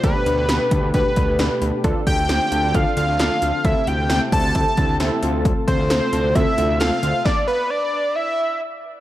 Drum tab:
HH |xxxxxxxx|xxxxxxxx|xxxxxxxx|xxxxxxxx|
SD |--o---o-|--o---o-|--o---o-|--o---o-|
BD |o--ooo--|oo--o---|o--ooo--|oo--o---|

HH |--------|
SD |o-------|
BD |o-------|